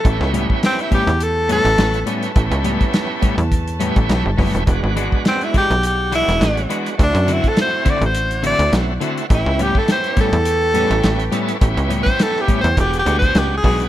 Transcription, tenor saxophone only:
0.00 0.32 A4 loud
0.66 0.82 C4 loud
0.81 0.92 E4 medium
0.94 1.25 G4 loud
1.23 1.50 A4 loud
1.52 2.07 A4 loud
5.28 5.46 C4 loud
5.44 5.55 E4 medium
5.58 5.84 G4 loud
5.87 6.13 G4 medium
6.15 6.70 E4 loud
7.03 7.34 D4 loud
7.32 7.50 E4 loud
7.49 7.58 A4 loud
7.61 7.92 C5 loud
7.90 8.03 D5 loud
8.06 8.44 C5 medium
8.46 8.73 D5 loud
9.34 9.64 E4 loud
9.63 9.79 G4 loud
9.78 9.89 A4 medium
9.92 10.18 C5 loud
10.21 11.31 A4 loud
12.03 12.24 C5 loud
12.22 12.43 A4 loud
12.41 12.59 G4 medium
12.61 12.78 C5 loud
12.80 12.97 G4 loud
12.99 13.17 G4 loud
13.19 13.40 C5 loud
13.38 13.55 G4 medium
13.57 13.84 G#4 loud

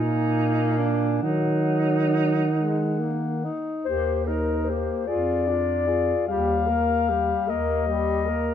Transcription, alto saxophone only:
0.00 0.79 D#4 medium
0.78 1.22 D4 medium
1.23 3.40 D#4 medium
3.87 4.29 G4 soft
4.28 4.71 A#4 soft
4.70 5.06 G4 soft
5.07 5.51 G#4 soft
5.50 5.89 F4 soft
5.87 6.27 G#4 soft
6.27 6.68 G4 soft
6.67 7.11 A#4 soft
7.09 7.49 G4 soft
7.48 7.87 A#4 soft
7.88 8.27 G4 soft
8.26 8.54 A#4 soft

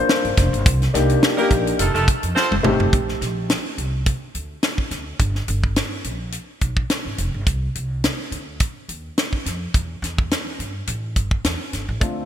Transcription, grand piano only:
0.00 0.68 A#3 medium
0.00 0.68 D4 medium
0.00 0.68 F4 medium
0.00 0.67 A4 loud
0.00 0.68 A#4 medium
0.00 0.58 C5 medium
0.93 1.21 A#3 medium
0.93 1.21 D4 medium
0.93 1.21 D#4 medium
0.93 1.22 G4 loud
1.37 1.79 A#3 medium
1.37 1.79 D4 medium
1.37 1.79 D#4 medium
1.37 1.79 G4 medium
2.63 2.83 A3 loud
2.63 2.83 C4 medium
2.63 2.83 D#4 medium
2.63 2.83 G4 loud
12.00 12.25 A3 medium
12.00 12.25 C4 medium
12.00 12.25 D4 medium
12.00 12.25 F4 medium

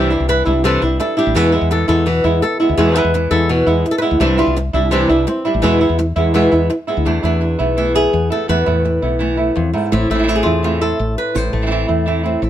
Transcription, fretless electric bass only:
0.00 0.16 C2 medium
0.20 0.43 C2 medium
0.46 0.77 C2 medium
0.82 0.97 C2 medium
1.26 1.34 A1 medium
1.35 1.58 E2 medium
1.61 1.85 E2 medium
1.88 2.19 E2 medium
2.24 2.40 E2 medium
2.69 2.77 D2 medium
2.78 3.01 E2 medium
3.04 3.27 E2 medium
3.31 3.62 E2 medium
3.67 3.82 E2 medium
4.11 4.19 D2 medium
4.20 4.43 C2 medium
4.47 4.70 C2 medium
4.73 5.04 C2 medium
5.09 5.25 C2 medium
5.54 5.62 A1 medium
5.62 5.86 E2 medium
5.89 6.13 E2 medium
6.16 6.47 E2 medium
6.52 6.68 E2 medium
6.97 7.05 D2 medium
7.06 7.21 E2 medium
7.23 7.54 E2 medium
7.60 8.06 B1 medium
8.13 8.29 E2 medium
8.49 8.64 E2 medium
8.67 8.98 E2 medium
9.02 9.49 B1 medium
9.56 9.72 E2 medium
9.92 10.08 A1 medium
10.10 10.41 A1 medium
10.46 10.92 E2 medium
10.99 11.15 A1 medium
11.35 11.51 A1 medium
11.53 11.84 A1 medium
11.89 12.35 E2 medium
12.42 12.50 A1 medium

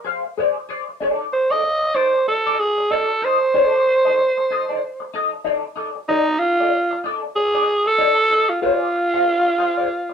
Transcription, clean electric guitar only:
0.04 0.21 G#4 medium
0.04 0.22 C5 medium
0.04 0.23 F5 medium
0.25 muted clean electric guitar stroke soft
0.37 0.54 G#4 medium
0.37 0.54 C5 medium
0.37 0.55 D5 medium
0.58 muted clean electric guitar stroke soft
0.69 0.82 G#4 medium
0.69 0.82 C5 medium
0.69 0.83 D5 medium
0.88 muted clean electric guitar stroke soft
1.00 1.23 D#4 medium
1.00 1.24 A4 medium
1.00 1.24 D5 medium
1.32 muted clean electric guitar stroke soft
1.50 1.61 D#4 medium
1.50 1.60 A4 medium
1.50 1.60 D5 medium
1.63 muted clean electric guitar stroke soft
1.83 muted clean electric guitar stroke soft
1.94 2.12 D#4 medium
1.94 2.12 A4 medium
1.94 2.12 D5 medium
2.14 muted clean electric guitar stroke medium
2.27 muted clean electric guitar stroke soft
2.47 2.58 D#4 medium
2.47 2.59 A4 medium
2.47 2.60 D#5 medium
2.59 muted clean electric guitar stroke soft
2.78 muted clean electric guitar stroke soft
2.91 3.07 D#4 medium
2.91 3.08 A4 medium
2.91 3.08 D5 medium
3.10 muted clean electric guitar stroke soft
3.22 3.35 D#4 medium
3.22 3.36 A4 medium
3.22 3.36 D#5 medium
3.41 muted clean electric guitar stroke soft
3.54 3.77 D#4 medium
3.54 3.77 A4 loud
3.54 3.78 D5 loud
3.86 muted clean electric guitar stroke soft
4.05 4.15 D#4 medium
4.05 4.14 A4 medium
4.05 4.14 D#5 medium
4.19 muted clean electric guitar stroke soft
4.37 muted clean electric guitar stroke soft
4.50 4.63 D#4 medium
4.50 4.64 A4 medium
4.50 4.64 D#5 medium
4.69 4.78 D#4 medium
4.69 4.78 A4 medium
4.69 4.78 D5 medium
5.00 muted clean electric guitar stroke soft
5.14 5.30 D#4 medium
5.14 5.30 A4 medium
5.14 5.31 D#5 medium
5.33 muted clean electric guitar stroke soft
5.44 5.61 D#4 medium
5.44 5.61 A4 medium
5.44 5.62 D5 medium
5.63 muted clean electric guitar stroke soft
5.76 5.89 D#4 medium
5.76 5.90 A4 medium
5.76 5.90 D5 medium
5.95 muted clean electric guitar stroke soft
6.09 6.25 D#4 medium
6.09 6.25 A4 medium
6.09 6.26 D5 medium
6.41 muted clean electric guitar stroke soft
6.60 6.69 D#4 medium
6.60 6.69 A4 medium
6.60 6.68 D5 medium
6.73 muted clean electric guitar stroke soft
6.91 muted clean electric guitar stroke soft
7.04 7.20 D#4 medium
7.04 7.21 A4 medium
7.04 7.21 D5 medium
7.24 muted clean electric guitar stroke soft
7.36 muted clean electric guitar stroke soft
7.55 7.66 D#4 medium
7.55 7.67 A4 medium
7.55 7.68 D#5 medium
7.67 muted clean electric guitar stroke soft
7.86 muted clean electric guitar stroke soft
7.98 8.15 D#4 medium
7.98 8.15 A4 medium
7.98 8.16 D5 loud
8.18 muted clean electric guitar stroke medium
8.31 8.43 D#4 medium
8.31 8.44 A4 medium
8.31 8.44 D#5 medium
8.50 muted clean electric guitar stroke soft
8.62 8.85 G#4 medium
8.62 8.85 C5 medium
8.62 8.86 D5 medium
8.94 muted clean electric guitar stroke soft
9.14 9.23 G#4 medium
9.14 9.22 C5 medium
9.14 9.22 F5 medium
9.26 muted clean electric guitar stroke soft
9.45 muted clean electric guitar stroke soft
9.58 9.71 G#4 medium
9.58 9.71 C5 medium
9.58 9.72 F5 medium
9.77 9.87 G#4 medium
9.77 9.86 C5 medium
9.77 9.86 D5 medium
10.09 muted clean electric guitar stroke soft

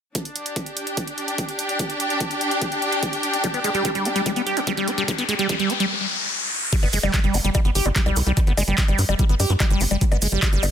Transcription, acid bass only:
3.44 3.47 G3 loud
3.54 3.60 B3 medium
3.64 3.70 G#3 medium
3.75 3.83 G3 loud
3.85 3.90 G3 loud
3.95 4.07 G3 medium
4.05 4.09 D4 medium
4.16 4.21 G3 loud
4.26 4.32 G3 loud
4.36 4.42 B3 medium
4.46 4.58 G4 medium
4.57 4.60 G3 medium
4.67 4.73 G3 loud
4.77 4.89 G3 loud
4.88 4.91 D4 medium
4.98 5.04 G3 loud
5.08 5.12 G3 loud
5.18 5.24 B3 medium
5.29 5.34 G#3 medium
5.39 5.47 G3 loud
5.49 5.55 G3 loud
5.60 5.71 G3 loud
5.70 5.73 D4 medium
5.80 5.86 G3 loud
6.73 6.76 G3 loud
6.83 6.88 B3 medium
6.93 6.99 G#3 loud
7.03 7.12 G3 loud
7.14 7.19 G3 loud
7.24 7.36 G3 loud
7.34 7.38 D4 medium
7.44 7.50 G3 loud
7.55 7.60 G3 loud
7.65 7.71 B3 medium
7.75 7.87 G4 medium
7.86 7.89 G3 medium
7.96 8.01 G3 loud
8.06 8.18 G3 loud
8.16 8.20 D4 medium
8.27 8.32 G3 loud
8.37 8.40 G3 loud
8.47 8.53 B3 medium
8.57 8.63 G#3 loud
8.68 8.76 G3 loud
8.88 9.00 G3 medium
8.99 9.02 D4 medium
9.09 9.14 G3 loud
9.19 9.25 G3 loud
9.29 9.35 B3 medium
9.40 9.51 G4 medium
9.50 9.53 G3 medium
9.60 9.66 G3 loud
9.71 9.82 G3 loud
9.81 9.84 D4 medium
9.91 9.97 G3 loud
10.01 10.05 G3 loud
10.12 10.17 B3 medium
10.22 10.27 G#3 loud
10.32 10.41 G3 loud
10.53 10.65 G3 loud
10.63 10.66 D4 medium

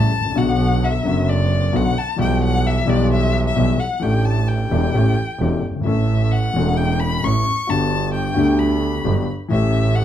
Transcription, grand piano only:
0.00 0.10 A3 medium
0.20 0.25 G#1 medium
0.25 0.31 A1 medium
0.31 0.36 A#1 medium
0.31 1.00 D3 medium
0.35 1.01 B1 medium
0.35 1.01 B2 medium
0.35 1.01 F#3 medium
0.35 1.01 B3 medium
0.35 1.02 F#4 medium
1.03 1.70 F#1 medium
1.03 1.70 F#2 medium
1.03 1.69 D3 medium
1.03 1.70 F#3 medium
1.03 1.70 B3 medium
1.07 1.71 F#4 medium
1.73 1.92 B1 medium
1.73 1.92 B2 medium
1.73 1.92 D3 medium
1.73 1.92 F#3 medium
1.73 1.93 B3 medium
1.73 1.93 F#4 medium
2.16 2.84 B1 medium
2.16 2.84 B2 medium
2.16 2.83 E3 medium
2.16 2.84 G3 medium
2.16 2.84 B3 medium
2.16 2.85 G4 medium
2.85 3.53 B1 medium
2.85 3.53 B2 medium
2.85 3.51 E3 medium
2.85 3.52 G3 medium
2.85 3.53 B3 medium
2.89 3.54 G4 medium
3.56 3.76 B1 medium
3.56 3.75 B2 medium
3.56 3.75 E3 medium
3.56 3.75 G3 medium
3.56 3.76 B3 medium
3.56 3.76 G4 medium
4.00 4.67 A1 medium
4.00 4.67 A2 medium
4.00 4.66 E3 medium
4.00 4.67 A3 medium
4.00 4.68 D4 medium
4.04 4.69 G4 medium
4.71 4.91 E1 medium
4.71 4.91 E2 medium
4.71 4.91 E3 medium
4.71 4.91 A3 medium
4.71 4.91 D4 medium
4.71 4.91 G4 medium
4.94 5.14 A1 medium
4.94 5.14 A2 medium
4.94 5.14 E3 medium
4.94 5.14 A3 medium
4.94 5.14 C#4 medium
4.94 5.14 G4 medium
5.40 5.60 E1 medium
5.40 5.60 E2 medium
5.40 5.60 E3 medium
5.40 5.60 A3 medium
5.40 5.60 C#4 medium
5.40 5.60 G4 medium
5.70 5.75 F#1 soft
5.75 5.81 G1 medium
5.81 5.86 G#1 medium
5.81 6.50 E3 medium
5.85 6.51 A1 medium
5.85 6.51 A2 medium
5.85 6.51 A3 medium
5.85 6.52 C#4 medium
5.85 6.52 A4 medium
6.53 7.21 E1 medium
6.53 7.21 E2 medium
6.53 7.19 E3 medium
6.53 7.20 A3 medium
6.53 7.21 C#4 medium
6.58 7.21 A4 medium
7.23 7.43 A1 medium
7.23 7.43 A2 medium
7.23 7.42 E3 medium
7.23 7.43 A3 medium
7.23 7.43 C#4 medium
7.23 7.43 A4 medium
7.67 8.34 G1 medium
7.67 8.34 G2 medium
7.67 8.34 B3 medium
7.67 8.35 D4 medium
7.67 8.33 F#4 medium
7.67 8.35 G4 medium
8.34 9.02 D2 medium
8.34 9.02 D3 medium
8.34 9.01 B3 medium
8.34 9.02 D4 medium
8.34 9.01 F#4 medium
8.38 9.03 G4 medium
9.04 9.24 G1 medium
9.04 9.24 G2 medium
9.04 9.24 F#3 medium
9.04 9.24 B3 medium
9.04 9.25 D4 medium
9.04 9.25 G4 medium
9.48 10.04 A1 medium
9.48 10.04 A2 medium
9.48 10.04 E3 medium
9.48 10.04 A3 medium
9.48 10.04 C#4 medium
9.48 10.04 G4 medium

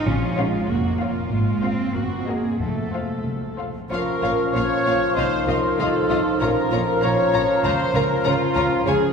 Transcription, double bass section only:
0.08 0.56 A#1 medium
0.69 1.19 F1 medium
1.32 1.82 G#1 medium
1.95 2.47 F#1 soft
2.60 3.12 F1 soft
3.26 3.77 C2 soft
3.91 3.99 A#1 soft
4.22 4.30 A#1 soft
4.54 4.62 A#1 soft
4.85 4.93 A#1 soft
5.17 5.25 C2 soft
5.47 5.55 C2 soft
5.78 5.86 C2 soft
6.10 6.18 C2 soft
6.41 6.49 A#1 soft
6.72 6.80 A#1 medium
7.03 7.11 A#1 medium
7.34 7.42 A#1 medium
7.64 7.72 C#2 medium
7.94 8.02 C#2 soft
8.26 8.34 C#2 medium
8.56 8.64 C#2 medium
8.87 8.95 C#2 medium

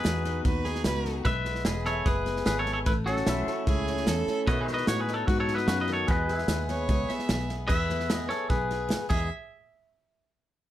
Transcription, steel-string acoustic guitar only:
0.00 0.40 D#3 medium
0.00 1.24 B3 medium
0.00 0.24 D#4 medium
0.05 0.44 F#4 medium
0.25 0.65 D#4 medium
0.45 0.81 F#2 medium
0.45 0.84 F#4 medium
0.66 1.05 D#4 medium
0.84 1.21 D#3 medium
0.84 1.23 F#4 medium
1.06 1.23 D#4 medium
1.25 1.61 E2 medium
1.25 2.84 G#3 medium
1.46 1.85 B3 medium
1.66 2.02 E3 medium
1.66 2.06 G#4 medium
1.86 2.25 B3 medium
2.06 2.42 B2 medium
2.06 2.45 G#4 medium
2.26 2.66 B3 medium
2.46 2.82 E3 medium
2.46 2.84 G#4 medium
2.67 2.87 B3 medium
2.86 3.22 A2 medium
2.86 4.45 A3 medium
3.07 3.47 C#4 medium
3.27 3.63 E3 medium
3.27 3.67 E4 medium
3.48 3.87 C#4 medium
3.68 4.03 E2 medium
3.68 4.07 E4 medium
3.88 4.27 C#4 medium
4.08 4.44 E3 medium
4.08 4.48 E4 medium
4.28 4.45 C#4 medium
4.48 4.84 B2 medium
4.48 4.87 D#3 medium
4.48 6.08 B3 medium
4.48 4.69 D#4 medium
4.48 4.88 F#4 medium
4.70 5.08 D#4 medium
4.88 5.24 D#3 medium
4.88 5.29 F#4 medium
5.10 5.48 D#4 medium
5.29 5.65 F#2 medium
5.29 6.07 F#4 medium
5.49 6.06 D#4 medium
5.69 5.89 C#3 medium
5.88 6.08 D#3 medium
6.08 6.44 E2 medium
6.08 7.67 G#3 medium
6.29 6.68 B3 medium
6.48 6.89 G#4 medium
6.69 7.09 B3 medium
6.89 7.25 B2 medium
6.89 7.28 G#4 medium
7.10 7.49 B3 medium
7.29 7.65 E3 medium
7.29 7.67 G#4 medium
7.50 7.90 B3 medium
7.70 8.06 E2 medium
7.91 8.29 B3 medium
8.10 8.46 E3 medium
8.10 8.70 G#4 medium
8.31 9.10 B3 medium
8.50 8.86 B2 medium
8.71 9.11 G#4 medium
8.89 9.08 E3 medium
9.09 9.28 E2 medium
9.09 9.28 E3 medium
9.09 9.28 G#3 medium
9.09 9.29 B3 medium
9.09 9.29 G#4 medium

